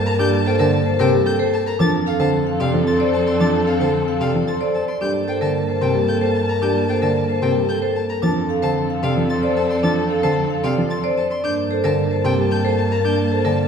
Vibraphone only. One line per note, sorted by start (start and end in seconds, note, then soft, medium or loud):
0.06 0.23 A#4 medium
0.19 0.37 D5 medium
0.46 0.63 C5 medium
0.59 0.77 D5 medium
0.86 1.03 C5 medium
0.99 1.17 A#4 medium
1.26 1.43 G5 medium
1.39 1.57 A4 medium
1.66 1.84 A#4 medium
1.80 1.97 A5 medium
2.07 2.24 F5 medium
2.20 2.37 A5 medium
2.47 2.64 F5 medium
2.60 2.77 D5 medium
2.87 3.04 C6 medium
3.00 3.18 C5 medium
3.27 3.44 D5 medium
3.40 3.58 A5 medium
3.67 3.85 F5 medium
3.81 3.98 A5 medium
4.08 4.25 F5 medium
4.21 4.38 D5 medium
4.48 4.65 C6 medium
4.61 4.78 C5 medium
4.88 5.00 D5 medium
5.01 5.19 D5 medium
5.28 5.45 C5 medium
5.41 5.59 D5 medium
5.68 5.86 C5 medium
5.81 5.99 A#4 medium
6.08 6.26 G5 medium
6.22 6.39 A4 medium
6.49 6.66 A#4 medium
6.62 6.79 D5 medium
6.89 7.06 C5 medium
7.03 7.20 D5 medium
7.30 7.47 C5 medium
7.43 7.60 A#4 medium
7.70 7.87 G5 medium
7.83 8.00 A4 medium
8.10 8.27 A#4 medium
8.23 8.40 A5 medium
8.50 8.67 F5 medium
8.63 8.80 A5 medium
8.90 9.07 F5 medium
9.04 9.21 D5 medium
9.30 9.47 C6 medium
9.43 9.61 C5 medium
9.71 9.88 D5 medium
9.84 10.01 A5 medium
10.11 10.28 F5 medium
10.24 10.41 A5 medium
10.50 10.68 F5 medium
10.64 10.81 D5 medium
10.90 11.08 C6 medium
11.04 11.21 C5 medium
11.31 11.43 D5 medium
11.44 11.61 D5 medium
11.71 11.88 C5 medium
11.84 12.01 D5 medium
12.11 12.28 C5 medium
12.51 12.69 G5 medium
12.65 12.82 A4 medium
12.92 13.09 A#4 medium
13.05 13.22 D5 medium
13.32 13.49 C5 medium
13.45 13.62 D5 medium